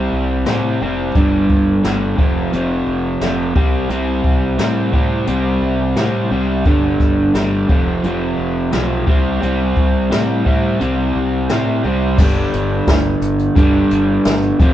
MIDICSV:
0, 0, Header, 1, 4, 480
1, 0, Start_track
1, 0, Tempo, 688863
1, 806, Time_signature, 4, 2, 24, 8
1, 10268, End_track
2, 0, Start_track
2, 0, Title_t, "Overdriven electric guitar"
2, 0, Program_c, 0, 29
2, 0, Note_on_c, 0, 48, 92
2, 0, Note_on_c, 0, 55, 95
2, 0, Note_on_c, 0, 60, 93
2, 317, Note_off_c, 0, 48, 0
2, 325, Note_on_c, 0, 48, 82
2, 327, Note_off_c, 0, 55, 0
2, 328, Note_off_c, 0, 60, 0
2, 330, Note_on_c, 0, 55, 74
2, 337, Note_on_c, 0, 60, 86
2, 557, Note_off_c, 0, 48, 0
2, 564, Note_off_c, 0, 60, 0
2, 565, Note_on_c, 0, 48, 74
2, 566, Note_off_c, 0, 55, 0
2, 569, Note_on_c, 0, 55, 79
2, 573, Note_on_c, 0, 60, 85
2, 791, Note_off_c, 0, 48, 0
2, 795, Note_off_c, 0, 60, 0
2, 803, Note_on_c, 0, 43, 88
2, 808, Note_on_c, 0, 50, 77
2, 812, Note_off_c, 0, 55, 0
2, 814, Note_on_c, 0, 55, 87
2, 1276, Note_off_c, 0, 43, 0
2, 1281, Note_off_c, 0, 50, 0
2, 1284, Note_on_c, 0, 43, 79
2, 1289, Note_on_c, 0, 50, 88
2, 1291, Note_off_c, 0, 55, 0
2, 1293, Note_on_c, 0, 55, 96
2, 1509, Note_off_c, 0, 43, 0
2, 1512, Note_off_c, 0, 50, 0
2, 1518, Note_on_c, 0, 41, 89
2, 1523, Note_on_c, 0, 48, 87
2, 1526, Note_off_c, 0, 55, 0
2, 1528, Note_on_c, 0, 53, 101
2, 1755, Note_off_c, 0, 41, 0
2, 1759, Note_off_c, 0, 48, 0
2, 1763, Note_on_c, 0, 41, 93
2, 1764, Note_off_c, 0, 53, 0
2, 1768, Note_on_c, 0, 48, 93
2, 1772, Note_on_c, 0, 53, 104
2, 2232, Note_off_c, 0, 41, 0
2, 2236, Note_off_c, 0, 48, 0
2, 2240, Note_on_c, 0, 41, 83
2, 2243, Note_off_c, 0, 53, 0
2, 2245, Note_on_c, 0, 48, 80
2, 2251, Note_on_c, 0, 53, 80
2, 2467, Note_off_c, 0, 41, 0
2, 2469, Note_off_c, 0, 48, 0
2, 2472, Note_off_c, 0, 53, 0
2, 2477, Note_on_c, 0, 48, 87
2, 2483, Note_on_c, 0, 55, 91
2, 2486, Note_on_c, 0, 60, 90
2, 2710, Note_off_c, 0, 48, 0
2, 2719, Note_on_c, 0, 48, 79
2, 2722, Note_off_c, 0, 60, 0
2, 2723, Note_off_c, 0, 55, 0
2, 2726, Note_on_c, 0, 55, 88
2, 2730, Note_on_c, 0, 60, 94
2, 3186, Note_off_c, 0, 48, 0
2, 3194, Note_on_c, 0, 48, 89
2, 3196, Note_off_c, 0, 55, 0
2, 3196, Note_off_c, 0, 60, 0
2, 3198, Note_on_c, 0, 55, 92
2, 3205, Note_on_c, 0, 60, 92
2, 3421, Note_off_c, 0, 48, 0
2, 3430, Note_on_c, 0, 48, 78
2, 3431, Note_off_c, 0, 60, 0
2, 3432, Note_off_c, 0, 55, 0
2, 3435, Note_on_c, 0, 55, 86
2, 3440, Note_on_c, 0, 60, 87
2, 3663, Note_off_c, 0, 48, 0
2, 3672, Note_off_c, 0, 60, 0
2, 3672, Note_on_c, 0, 48, 92
2, 3673, Note_off_c, 0, 55, 0
2, 3676, Note_on_c, 0, 55, 100
2, 3680, Note_on_c, 0, 60, 96
2, 4150, Note_off_c, 0, 48, 0
2, 4159, Note_on_c, 0, 48, 78
2, 4160, Note_off_c, 0, 60, 0
2, 4161, Note_off_c, 0, 55, 0
2, 4164, Note_on_c, 0, 55, 82
2, 4168, Note_on_c, 0, 60, 87
2, 4388, Note_off_c, 0, 48, 0
2, 4396, Note_on_c, 0, 48, 78
2, 4399, Note_off_c, 0, 60, 0
2, 4400, Note_off_c, 0, 55, 0
2, 4403, Note_on_c, 0, 55, 86
2, 4407, Note_on_c, 0, 60, 86
2, 4625, Note_off_c, 0, 48, 0
2, 4630, Note_off_c, 0, 60, 0
2, 4639, Note_on_c, 0, 43, 85
2, 4645, Note_on_c, 0, 50, 95
2, 4646, Note_off_c, 0, 55, 0
2, 4648, Note_on_c, 0, 55, 98
2, 5109, Note_off_c, 0, 43, 0
2, 5115, Note_off_c, 0, 50, 0
2, 5118, Note_on_c, 0, 43, 83
2, 5123, Note_on_c, 0, 50, 82
2, 5126, Note_off_c, 0, 55, 0
2, 5128, Note_on_c, 0, 55, 91
2, 5347, Note_off_c, 0, 43, 0
2, 5349, Note_off_c, 0, 50, 0
2, 5360, Note_on_c, 0, 41, 93
2, 5363, Note_on_c, 0, 48, 94
2, 5366, Note_off_c, 0, 55, 0
2, 5368, Note_on_c, 0, 53, 99
2, 5595, Note_off_c, 0, 41, 0
2, 5600, Note_off_c, 0, 48, 0
2, 5604, Note_on_c, 0, 41, 85
2, 5605, Note_off_c, 0, 53, 0
2, 5608, Note_on_c, 0, 48, 100
2, 5614, Note_on_c, 0, 53, 107
2, 6073, Note_off_c, 0, 41, 0
2, 6079, Note_off_c, 0, 48, 0
2, 6081, Note_on_c, 0, 41, 71
2, 6083, Note_off_c, 0, 53, 0
2, 6087, Note_on_c, 0, 48, 87
2, 6091, Note_on_c, 0, 53, 87
2, 6309, Note_off_c, 0, 41, 0
2, 6310, Note_off_c, 0, 48, 0
2, 6315, Note_off_c, 0, 53, 0
2, 6319, Note_on_c, 0, 48, 93
2, 6323, Note_on_c, 0, 55, 91
2, 6329, Note_on_c, 0, 60, 102
2, 6552, Note_off_c, 0, 48, 0
2, 6559, Note_off_c, 0, 55, 0
2, 6561, Note_on_c, 0, 48, 92
2, 6564, Note_off_c, 0, 60, 0
2, 6567, Note_on_c, 0, 55, 97
2, 6572, Note_on_c, 0, 60, 94
2, 7037, Note_off_c, 0, 48, 0
2, 7041, Note_off_c, 0, 55, 0
2, 7045, Note_off_c, 0, 60, 0
2, 7045, Note_on_c, 0, 48, 76
2, 7050, Note_on_c, 0, 55, 88
2, 7053, Note_on_c, 0, 60, 88
2, 7275, Note_off_c, 0, 48, 0
2, 7282, Note_off_c, 0, 55, 0
2, 7284, Note_on_c, 0, 48, 75
2, 7286, Note_off_c, 0, 60, 0
2, 7290, Note_on_c, 0, 55, 90
2, 7294, Note_on_c, 0, 60, 90
2, 7517, Note_off_c, 0, 48, 0
2, 7521, Note_off_c, 0, 55, 0
2, 7525, Note_off_c, 0, 60, 0
2, 7526, Note_on_c, 0, 48, 89
2, 7530, Note_on_c, 0, 55, 91
2, 7533, Note_on_c, 0, 60, 100
2, 7997, Note_off_c, 0, 48, 0
2, 8003, Note_off_c, 0, 55, 0
2, 8005, Note_on_c, 0, 48, 82
2, 8008, Note_off_c, 0, 60, 0
2, 8011, Note_on_c, 0, 55, 83
2, 8017, Note_on_c, 0, 60, 85
2, 8238, Note_off_c, 0, 48, 0
2, 8243, Note_off_c, 0, 55, 0
2, 8246, Note_on_c, 0, 48, 83
2, 8249, Note_off_c, 0, 60, 0
2, 8252, Note_on_c, 0, 55, 84
2, 8258, Note_on_c, 0, 60, 82
2, 8475, Note_off_c, 0, 48, 0
2, 8477, Note_off_c, 0, 55, 0
2, 8480, Note_off_c, 0, 60, 0
2, 8483, Note_on_c, 0, 43, 87
2, 8498, Note_on_c, 0, 50, 99
2, 8509, Note_on_c, 0, 55, 94
2, 9434, Note_off_c, 0, 43, 0
2, 9442, Note_off_c, 0, 50, 0
2, 9446, Note_on_c, 0, 43, 75
2, 9447, Note_off_c, 0, 55, 0
2, 9458, Note_on_c, 0, 50, 75
2, 9471, Note_on_c, 0, 55, 96
2, 10155, Note_off_c, 0, 43, 0
2, 10161, Note_off_c, 0, 50, 0
2, 10168, Note_off_c, 0, 55, 0
2, 10170, Note_on_c, 0, 41, 88
2, 10182, Note_on_c, 0, 48, 92
2, 10193, Note_on_c, 0, 53, 102
2, 10268, Note_off_c, 0, 41, 0
2, 10268, Note_off_c, 0, 48, 0
2, 10268, Note_off_c, 0, 53, 0
2, 10268, End_track
3, 0, Start_track
3, 0, Title_t, "Fingered electric bass"
3, 0, Program_c, 1, 33
3, 86, Note_on_c, 1, 36, 76
3, 303, Note_off_c, 1, 36, 0
3, 327, Note_on_c, 1, 45, 73
3, 544, Note_off_c, 1, 45, 0
3, 568, Note_on_c, 1, 29, 81
3, 784, Note_off_c, 1, 29, 0
3, 803, Note_on_c, 1, 31, 90
3, 1021, Note_off_c, 1, 31, 0
3, 1043, Note_on_c, 1, 31, 85
3, 1261, Note_off_c, 1, 31, 0
3, 1283, Note_on_c, 1, 31, 82
3, 1500, Note_off_c, 1, 31, 0
3, 1522, Note_on_c, 1, 29, 82
3, 1739, Note_off_c, 1, 29, 0
3, 1760, Note_on_c, 1, 29, 82
3, 1978, Note_off_c, 1, 29, 0
3, 1997, Note_on_c, 1, 29, 76
3, 2217, Note_off_c, 1, 29, 0
3, 2236, Note_on_c, 1, 29, 81
3, 2456, Note_off_c, 1, 29, 0
3, 2477, Note_on_c, 1, 36, 78
3, 2696, Note_off_c, 1, 36, 0
3, 2717, Note_on_c, 1, 36, 91
3, 2936, Note_off_c, 1, 36, 0
3, 2958, Note_on_c, 1, 36, 88
3, 3177, Note_off_c, 1, 36, 0
3, 3196, Note_on_c, 1, 45, 82
3, 3651, Note_off_c, 1, 45, 0
3, 3678, Note_on_c, 1, 36, 87
3, 3897, Note_off_c, 1, 36, 0
3, 3913, Note_on_c, 1, 36, 79
3, 4134, Note_off_c, 1, 36, 0
3, 4155, Note_on_c, 1, 45, 81
3, 4375, Note_off_c, 1, 45, 0
3, 4396, Note_on_c, 1, 36, 79
3, 4616, Note_off_c, 1, 36, 0
3, 4637, Note_on_c, 1, 31, 95
3, 4857, Note_off_c, 1, 31, 0
3, 4876, Note_on_c, 1, 31, 85
3, 5096, Note_off_c, 1, 31, 0
3, 5116, Note_on_c, 1, 31, 87
3, 5337, Note_off_c, 1, 31, 0
3, 5360, Note_on_c, 1, 29, 88
3, 5579, Note_off_c, 1, 29, 0
3, 5599, Note_on_c, 1, 29, 91
3, 5819, Note_off_c, 1, 29, 0
3, 5844, Note_on_c, 1, 29, 76
3, 6062, Note_off_c, 1, 29, 0
3, 6086, Note_on_c, 1, 35, 78
3, 6303, Note_off_c, 1, 35, 0
3, 6322, Note_on_c, 1, 36, 83
3, 6542, Note_off_c, 1, 36, 0
3, 6565, Note_on_c, 1, 36, 95
3, 6783, Note_off_c, 1, 36, 0
3, 6805, Note_on_c, 1, 36, 83
3, 7023, Note_off_c, 1, 36, 0
3, 7054, Note_on_c, 1, 45, 85
3, 7504, Note_off_c, 1, 45, 0
3, 7532, Note_on_c, 1, 36, 84
3, 7748, Note_off_c, 1, 36, 0
3, 7772, Note_on_c, 1, 36, 82
3, 7989, Note_off_c, 1, 36, 0
3, 8013, Note_on_c, 1, 45, 80
3, 8229, Note_off_c, 1, 45, 0
3, 8253, Note_on_c, 1, 36, 83
3, 8469, Note_off_c, 1, 36, 0
3, 8488, Note_on_c, 1, 31, 104
3, 8671, Note_off_c, 1, 31, 0
3, 8738, Note_on_c, 1, 31, 91
3, 8917, Note_off_c, 1, 31, 0
3, 8972, Note_on_c, 1, 31, 95
3, 9153, Note_off_c, 1, 31, 0
3, 9208, Note_on_c, 1, 31, 94
3, 9391, Note_off_c, 1, 31, 0
3, 9451, Note_on_c, 1, 31, 90
3, 9633, Note_off_c, 1, 31, 0
3, 9692, Note_on_c, 1, 31, 84
3, 9874, Note_off_c, 1, 31, 0
3, 9933, Note_on_c, 1, 31, 89
3, 10114, Note_off_c, 1, 31, 0
3, 10171, Note_on_c, 1, 29, 88
3, 10268, Note_off_c, 1, 29, 0
3, 10268, End_track
4, 0, Start_track
4, 0, Title_t, "Drums"
4, 319, Note_on_c, 9, 42, 61
4, 322, Note_on_c, 9, 38, 96
4, 389, Note_off_c, 9, 42, 0
4, 391, Note_off_c, 9, 38, 0
4, 801, Note_on_c, 9, 42, 62
4, 804, Note_on_c, 9, 36, 105
4, 871, Note_off_c, 9, 42, 0
4, 873, Note_off_c, 9, 36, 0
4, 1043, Note_on_c, 9, 36, 80
4, 1113, Note_off_c, 9, 36, 0
4, 1283, Note_on_c, 9, 42, 58
4, 1286, Note_on_c, 9, 38, 102
4, 1353, Note_off_c, 9, 42, 0
4, 1356, Note_off_c, 9, 38, 0
4, 1522, Note_on_c, 9, 36, 93
4, 1591, Note_off_c, 9, 36, 0
4, 1763, Note_on_c, 9, 42, 56
4, 1833, Note_off_c, 9, 42, 0
4, 2237, Note_on_c, 9, 42, 57
4, 2240, Note_on_c, 9, 38, 104
4, 2306, Note_off_c, 9, 42, 0
4, 2309, Note_off_c, 9, 38, 0
4, 2479, Note_on_c, 9, 36, 104
4, 2549, Note_off_c, 9, 36, 0
4, 2718, Note_on_c, 9, 42, 61
4, 2788, Note_off_c, 9, 42, 0
4, 2956, Note_on_c, 9, 36, 77
4, 3026, Note_off_c, 9, 36, 0
4, 3196, Note_on_c, 9, 42, 59
4, 3199, Note_on_c, 9, 38, 102
4, 3265, Note_off_c, 9, 42, 0
4, 3268, Note_off_c, 9, 38, 0
4, 3436, Note_on_c, 9, 36, 77
4, 3506, Note_off_c, 9, 36, 0
4, 3674, Note_on_c, 9, 42, 66
4, 3743, Note_off_c, 9, 42, 0
4, 4154, Note_on_c, 9, 42, 61
4, 4157, Note_on_c, 9, 38, 98
4, 4224, Note_off_c, 9, 42, 0
4, 4227, Note_off_c, 9, 38, 0
4, 4637, Note_on_c, 9, 36, 107
4, 4638, Note_on_c, 9, 42, 61
4, 4706, Note_off_c, 9, 36, 0
4, 4707, Note_off_c, 9, 42, 0
4, 4877, Note_on_c, 9, 36, 81
4, 4879, Note_on_c, 9, 38, 31
4, 4947, Note_off_c, 9, 36, 0
4, 4949, Note_off_c, 9, 38, 0
4, 5119, Note_on_c, 9, 42, 58
4, 5122, Note_on_c, 9, 38, 104
4, 5189, Note_off_c, 9, 42, 0
4, 5191, Note_off_c, 9, 38, 0
4, 5361, Note_on_c, 9, 36, 97
4, 5431, Note_off_c, 9, 36, 0
4, 5602, Note_on_c, 9, 42, 58
4, 5672, Note_off_c, 9, 42, 0
4, 6078, Note_on_c, 9, 42, 57
4, 6081, Note_on_c, 9, 38, 100
4, 6148, Note_off_c, 9, 42, 0
4, 6150, Note_off_c, 9, 38, 0
4, 6323, Note_on_c, 9, 36, 101
4, 6392, Note_off_c, 9, 36, 0
4, 6569, Note_on_c, 9, 42, 56
4, 6639, Note_off_c, 9, 42, 0
4, 6805, Note_on_c, 9, 36, 80
4, 6875, Note_off_c, 9, 36, 0
4, 7049, Note_on_c, 9, 42, 57
4, 7052, Note_on_c, 9, 38, 104
4, 7119, Note_off_c, 9, 42, 0
4, 7122, Note_off_c, 9, 38, 0
4, 7288, Note_on_c, 9, 36, 72
4, 7358, Note_off_c, 9, 36, 0
4, 7529, Note_on_c, 9, 42, 62
4, 7599, Note_off_c, 9, 42, 0
4, 8008, Note_on_c, 9, 42, 59
4, 8010, Note_on_c, 9, 38, 108
4, 8077, Note_off_c, 9, 42, 0
4, 8080, Note_off_c, 9, 38, 0
4, 8489, Note_on_c, 9, 49, 123
4, 8490, Note_on_c, 9, 36, 116
4, 8559, Note_off_c, 9, 36, 0
4, 8559, Note_off_c, 9, 49, 0
4, 8733, Note_on_c, 9, 42, 73
4, 8803, Note_off_c, 9, 42, 0
4, 8970, Note_on_c, 9, 36, 78
4, 8970, Note_on_c, 9, 42, 92
4, 8973, Note_on_c, 9, 38, 115
4, 9039, Note_off_c, 9, 42, 0
4, 9040, Note_off_c, 9, 36, 0
4, 9042, Note_off_c, 9, 38, 0
4, 9212, Note_on_c, 9, 42, 71
4, 9281, Note_off_c, 9, 42, 0
4, 9331, Note_on_c, 9, 42, 45
4, 9401, Note_off_c, 9, 42, 0
4, 9451, Note_on_c, 9, 36, 113
4, 9452, Note_on_c, 9, 42, 92
4, 9520, Note_off_c, 9, 36, 0
4, 9522, Note_off_c, 9, 42, 0
4, 9691, Note_on_c, 9, 42, 73
4, 9760, Note_off_c, 9, 42, 0
4, 9929, Note_on_c, 9, 42, 98
4, 9932, Note_on_c, 9, 38, 117
4, 9998, Note_off_c, 9, 42, 0
4, 10001, Note_off_c, 9, 38, 0
4, 10048, Note_on_c, 9, 42, 47
4, 10118, Note_off_c, 9, 42, 0
4, 10172, Note_on_c, 9, 36, 113
4, 10173, Note_on_c, 9, 42, 73
4, 10242, Note_off_c, 9, 36, 0
4, 10243, Note_off_c, 9, 42, 0
4, 10268, End_track
0, 0, End_of_file